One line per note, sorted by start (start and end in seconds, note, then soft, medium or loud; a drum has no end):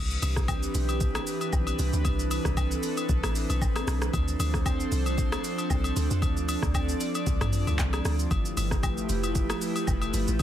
0.00 0.18 C2 loud
0.00 4.10 E3 medium
0.00 8.27 C4 medium
0.00 4.10 D4 medium
0.00 2.03 G4 medium
0.00 4.10 B4 medium
0.11 shaker medium
0.22 0.67 C2 loud
0.22 open hi-hat medium
0.22 high agogo medium
0.22 shaker loud
0.36 kick medium
0.36 cross-stick medium
0.36 shaker medium
0.48 kick medium
0.48 high agogo medium
0.48 low woodblock medium
0.48 shaker medium
0.63 shaker medium
0.75 1.19 B1 medium
0.75 open hi-hat medium
0.75 shaker medium
0.89 high agogo medium
0.89 shaker medium
1.01 kick loud
1.01 shaker medium
1.15 cross-stick loud
1.15 high agogo medium
1.15 shaker medium
1.27 open hi-hat medium
1.27 shaker medium
1.41 high agogo medium
1.41 shaker soft
1.53 1.75 B1 loud
1.53 kick medium
1.53 low woodblock medium
1.53 shaker medium
1.67 high agogo medium
1.67 shaker soft
1.79 1.91 C2 medium
1.79 open hi-hat medium
1.79 shaker loud
1.93 2.03 D2 medium
1.93 shaker medium
2.05 2.39 C2 loud
2.05 4.12 A4 medium
2.05 kick loud
2.05 high agogo medium
2.05 shaker medium
2.19 shaker medium
2.31 open hi-hat medium
2.31 high agogo medium
2.31 shaker loud
2.45 2.78 C2 loud
2.45 kick medium
2.45 cross-stick medium
2.45 shaker medium
2.57 kick medium
2.57 high agogo medium
2.57 low woodblock medium
2.57 shaker medium
2.71 shaker medium
2.83 open hi-hat medium
2.83 shaker medium
2.97 high agogo medium
2.97 shaker medium
3.09 3.21 B1 loud
3.09 kick loud
3.09 shaker medium
3.23 3.46 A1 medium
3.23 cross-stick loud
3.23 high agogo medium
3.23 shaker medium
3.35 open hi-hat medium
3.35 shaker medium
3.50 3.63 B1 medium
3.50 high agogo medium
3.50 shaker medium
3.62 3.84 A1 loud
3.62 kick loud
3.62 low woodblock medium
3.62 shaker medium
3.76 cross-stick medium
3.76 high agogo medium
3.76 shaker soft
3.87 4.10 B1 medium
3.87 cross-stick loud
3.87 open hi-hat medium
3.87 shaker loud
4.02 cross-stick loud
4.02 shaker medium
4.13 4.36 D2 loud
4.13 10.43 F3 medium
4.13 8.27 D4 medium
4.13 8.27 A4 medium
4.13 6.20 C5 medium
4.13 kick loud
4.13 high agogo medium
4.13 shaker medium
4.28 shaker medium
4.40 4.84 D2 loud
4.40 open hi-hat medium
4.40 high agogo medium
4.40 shaker loud
4.54 kick medium
4.54 cross-stick medium
4.54 shaker medium
4.66 kick medium
4.66 high agogo medium
4.66 low woodblock medium
4.66 shaker medium
4.80 shaker medium
4.92 5.36 C2 medium
4.92 open hi-hat medium
4.92 shaker medium
5.06 high agogo medium
5.06 shaker medium
5.18 kick loud
5.18 shaker medium
5.32 cross-stick loud
5.32 high agogo medium
5.32 shaker medium
5.44 open hi-hat soft
5.44 shaker medium
5.58 high agogo medium
5.58 shaker medium
5.70 5.93 C2 loud
5.70 kick loud
5.70 low woodblock medium
5.70 shaker medium
5.84 high agogo medium
5.84 shaker soft
5.96 6.09 D2 medium
5.96 open hi-hat medium
5.96 shaker loud
6.11 6.24 F2 loud
6.11 shaker medium
6.22 6.57 D2 loud
6.22 8.29 D5 medium
6.22 kick loud
6.22 high agogo medium
6.22 shaker medium
6.37 shaker medium
6.49 open hi-hat medium
6.49 high agogo medium
6.49 shaker loud
6.63 6.95 D2 loud
6.63 kick medium
6.63 cross-stick medium
6.63 shaker medium
6.74 kick medium
6.74 high agogo medium
6.74 low woodblock medium
6.74 shaker medium
6.89 shaker medium
7.00 open hi-hat medium
7.00 shaker medium
7.15 high agogo medium
7.15 shaker medium
7.27 7.39 C2 loud
7.27 kick loud
7.27 shaker medium
7.41 7.63 A1 medium
7.41 cross-stick loud
7.41 mid tom loud
7.41 high agogo medium
7.41 shaker medium
7.53 open hi-hat soft
7.53 shaker medium
7.67 7.77 D2 medium
7.67 high agogo medium
7.67 shaker soft
7.79 8.01 C2 loud
7.79 kick loud
7.79 clap medium
7.79 low woodblock medium
7.79 shaker medium
7.93 cross-stick medium
7.93 high agogo medium
7.93 shaker soft
8.05 8.27 D2 medium
8.05 cross-stick loud
8.05 open hi-hat medium
8.05 shaker loud
8.19 shaker medium
8.31 8.53 G1 loud
8.31 10.43 A3 medium
8.31 10.43 E4 medium
8.31 10.38 G4 medium
8.31 10.43 B4 medium
8.31 kick loud
8.31 high agogo medium
8.31 shaker medium
8.45 shaker medium
8.57 9.02 G1 loud
8.57 open hi-hat medium
8.57 high agogo medium
8.57 shaker loud
8.71 kick medium
8.71 cross-stick medium
8.71 shaker medium
8.83 kick medium
8.83 high agogo medium
8.83 low woodblock medium
8.83 shaker medium
8.98 shaker medium
9.09 9.54 F1 medium
9.09 open hi-hat medium
9.09 shaker medium
9.24 high agogo medium
9.24 shaker medium
9.35 kick loud
9.35 shaker medium
9.50 cross-stick loud
9.50 high agogo medium
9.50 shaker medium
9.61 open hi-hat soft
9.61 shaker medium
9.76 high agogo medium
9.76 shaker soft
9.87 10.10 F1 loud
9.87 kick loud
9.87 low woodblock medium
9.87 shaker medium
10.02 high agogo medium
10.02 shaker soft
10.14 10.26 G1 medium
10.14 open hi-hat medium
10.14 shaker loud
10.28 10.38 A1 medium
10.28 shaker medium
10.39 high agogo medium